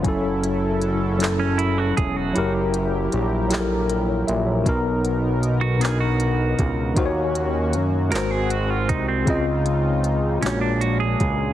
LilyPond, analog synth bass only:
\new Staff \with { instrumentName = "Analog synth bass" } { \clef bass \time 6/8 \key fis \dorian \tempo 4. = 52 fis,,2~ fis,,8 e,,8 | fis,,4 ais,,4. ais,,8 | b,,2~ b,,8 cis,8 | dis,4 fis,8 gis,,4 bis,,8 |
cis,4. ais,,4 cis,8 | }